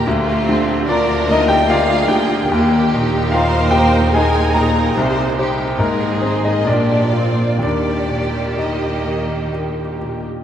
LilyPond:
<<
  \new Staff \with { instrumentName = "Violin section" } { \time 3/4 \key ees \major \tempo 4 = 72 r4 d''8 ees''16 g''16 f''8 g''8 | r4 f''8 g''8 aes''8 bes''8 | r4 bes'8 c''16 ees''16 d''4 | d''4 ees''4 r4 | }
  \new Staff \with { instrumentName = "Violin section" } { \time 3/4 \key ees \major f'4 bes'4 aes'4 | g'4 c''4 bes'4 | c''8 g'8 aes'4 g'8 f'8 | g'2~ g'8 r8 | }
  \new Staff \with { instrumentName = "Grand piano" } { \time 3/4 \key ees \major << { r4 <d' d''>8 <ees' ees''>16 <g' g''>16 <d'' f''>8 <g' g''>8 | r4 <f' f''>8 <g' g''>8 <aes' aes''>8 <bes' bes''>8 | r4 <bes ees' bes'>8 c'16 <ees' ees''>16 <d' bes' d''>4 | <d' bes' d''>4 <ees' ees''>4 r4 | } \\ { d,8 d8 <f' bes'>8 bes8 <f' bes'>8 d8 | ees,8 bes,8 <ees' bes'>8 bes8 <ees' bes'>8 bes,8 | c,8 <g' c''>8 aes,8 <aes' c''>8 bes,8 <f' bes'>8 | ees,8 bes,8 <g' bes'>8 bes8 <g' bes'>8 bes,8 | } >> }
  \new Staff \with { instrumentName = "Viola section" } { \time 3/4 \key ees \major << { g'4 f'4 f'4 | g'4 bes'4 aes'4 | g'8 g'8 aes'4 f'4 | g'2~ g'8. r16 | } \\ { bes8 c'8 d'4 bes4 | bes8 ees'2~ ees'8~ | ees'4 ees'4 d'8 c'8 | bes2~ bes8. r16 | } >> }
  \new Staff \with { instrumentName = "Cello section" } { \clef bass \time 3/4 \key ees \major d,2. | ees,2. | c4 aes,4 bes,4 | ees2~ ees8. r16 | }
  \new Staff \with { instrumentName = "Double bass section" } { \clef bass \time 3/4 \key ees \major d,2. | ees,2. | c,4 aes,,4 bes,,4 | ees,2~ ees,8. r16 | }
>>